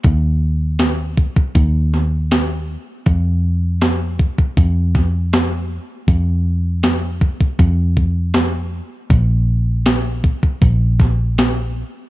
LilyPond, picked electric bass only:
\new Staff \with { instrumentName = "Picked electric bass" } { \clef bass \time 4/4 \key bes \dorian \tempo 4 = 79 ees,2 ees,2 | f,2 f,2 | f,2 f,2 | bes,,2 bes,,2 | }